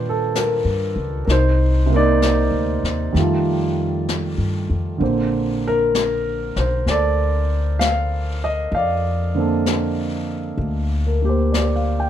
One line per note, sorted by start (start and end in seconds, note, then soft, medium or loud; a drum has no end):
0.00 0.62 A#2 medium
0.00 1.25 D#3 soft
0.00 1.27 G3 soft
0.00 1.29 D4 soft
0.00 1.31 F4 soft
0.00 1.29 B4 medium
0.00 1.30 C5 medium
0.00 1.30 D5 medium
0.09 0.38 A4 medium
0.35 1.20 A#4 medium
0.35 brush sweep soft
0.35 snare soft
0.35 hi-hat pedal soft
0.65 0.94 G2 soft
0.96 1.25 C#2 soft
1.25 2.48 C2 medium
1.25 1.29 A#4 soft
1.25 brush sweep soft
1.25 snare soft
1.30 1.95 D#4 soft
1.30 1.89 C5 medium
1.86 3.12 C3 soft
1.86 3.14 A#3 soft
1.94 3.16 C4 soft
1.94 3.17 D#4 medium
1.94 3.12 A#4 soft
1.94 4.69 D5 medium
2.22 brush sweep soft
2.22 snare soft
2.22 hi-hat pedal soft
2.51 2.81 D2 soft
2.83 3.12 D#2 soft
2.83 snare soft
3.12 4.35 F2 medium
3.12 5.00 D#3 soft
3.12 5.00 G3 soft
3.12 5.01 A3 soft
3.12 brush sweep soft
3.12 snare soft
3.18 5.02 F4 soft
4.09 brush sweep soft
4.09 snare soft
4.09 hi-hat pedal soft
4.38 4.67 G2 soft
4.70 4.99 F2 medium
4.98 6.53 A#1 medium
4.98 8.72 D3 soft
4.98 8.73 A#3 soft
4.98 8.74 C4 soft
4.98 brush sweep soft
5.04 6.58 C5 soft
5.68 6.55 A#4 medium
5.95 brush sweep soft
5.95 snare soft
5.95 hi-hat pedal soft
6.56 6.84 B1 soft
6.56 6.89 C5 soft
6.56 snare soft
6.86 8.69 D2 medium
6.86 7.84 D5 medium
6.86 brush sweep soft
6.86 snare soft
6.91 8.71 A4 soft
7.79 8.39 F5 medium
7.79 brush sweep soft
7.79 snare soft
7.79 hi-hat pedal soft
8.44 8.74 D#5 medium
8.72 10.55 F2 medium
8.72 10.56 F5 medium
8.72 brush sweep soft
8.76 10.57 D5 soft
9.35 12.10 D3 soft
9.35 11.20 A#3 soft
9.35 12.10 C4 soft
9.39 12.10 A4 soft
9.66 brush sweep soft
9.66 snare soft
9.66 hi-hat pedal soft
10.57 12.10 D2 medium
10.57 brush sweep soft
11.07 11.35 A#4 soft
11.22 12.10 A#3 soft
11.22 12.10 G4 soft
11.29 11.62 C5 soft
11.52 11.97 D5 soft
11.52 brush sweep soft
11.52 snare soft
11.52 hi-hat pedal soft
11.76 12.10 F5 soft
12.00 12.10 G5 soft